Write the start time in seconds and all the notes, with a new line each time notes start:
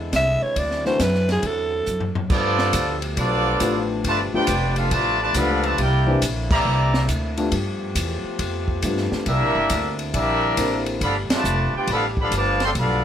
Already playing: E2 D3 G#3 C4 E4
0.12 C2 E5, kick, snare, hi-hat pedal, ride
0.42 C#5, muted upright bass stroke
0.56 D2 D3 F#3 D5, kick, ride
0.71 snare
0.85 E3 A3 C4 D4 F#4 C5, snare
0.99 F#2 B4, kick, snare, hi-hat pedal, ride
1.14 snare
1.29 G#4, snare, ride
1.43 E2 A4, kick, ride
1.86 F#2, hi-hat pedal
2.00 floor tom
2.15 floor tom
2.30 G2 F3 A3 B3 D4 F4 G4 A4 D5, kick, crash
2.58 snare
2.73 D2, kick, hi-hat pedal, ride
3.02 ride
3.16 B1 F3 B3 D4 F4 A4 D5, kick, ride
3.60 A1 F3 A3 B3 D4 G4, kick, hi-hat pedal, ride
4.04 G1 D3 F3 A3, kick, ride
4.08 F4 B4 D5 A5
4.33 F3 A3 B3 D4 F4 G4 B4 D5 G5, muted upright bass stroke
4.47 F1, kick, hi-hat pedal, ride
4.76 B3 D4 F4 A4 B4 F5, ride
4.91 A1 D3 F3 A3 F4 B4 D5 A5, kick, ride
5.20 D3 F3 A3 F4 B4 D5 A5
5.34 C#2 D3 F3 A3 B3 D4 G4 A4 D5 F5 B5, kick, hi-hat pedal, ride
5.62 D3 F3 A3 F4 B4 A5, ride
5.67 D5
5.77 C2 D3 A#3 C4 E4 G4, kick, ride
5.81 E4 A#4 D5 G5
6.07 E3 A#3 C4 D4 G4
6.21 A#1, kick, hi-hat pedal, ride
6.51 E3 G3 A#3 G4 D5 E5 A#5, kick, crash
6.65 C2
6.94 snare
7.08 D2, kick, hi-hat pedal, ride
7.37 A3 B3 D4 F4 G4, ride
7.52 G2 F3 A3 B3 G4, kick, ride
7.95 E2, kick, hi-hat pedal, ride
8.24 muted upright bass stroke
8.39 F2, kick, ride
8.68 kick
8.82 G2 A3 B3 D4 F4 G4, kick, hi-hat pedal, ride
8.97 snare
9.12 muted upright bass stroke, snare
9.26 C2 D3 G3 A#3 C4 D4 E4 G4 A#4 E5, kick, ride
9.41 A#1
9.55 G1
9.70 D2, kick, hi-hat pedal, ride
9.99 ride
10.13 A#1 G3 A#3 D4 E4 G4 A#4 E5, kick, ride
10.57 A1 A#3 C4 D4 E4 G4, kick, hi-hat pedal, ride
10.86 ride
11.01 G1 D3 F3 G3 A3 B3 G4 A4 D5 F5 B5, kick, ride
11.29 D3 F3 A3, muted upright bass stroke, snare, ride
11.34 F4 B4 D5 A5
11.44 F1, hi-hat pedal
11.73 B3 D4 F4 G4 B4 D5 G5, muted upright bass stroke
11.87 A1, kick, ride
11.92 D3 F3 B3 A4 D5 F5 B5
12.17 D3 F3 B3, kick
12.22 A4 D5 F5 B5
12.31 G1 F3 B3 D4, kick, hi-hat pedal, ride
12.37 B4 F5 A5 D6
12.60 C4, snare, ride
12.65 A4 D5 F5 C6
12.75 B1 D3 F3 B3 F4, kick, ride
12.80 A4 D5 F5 B5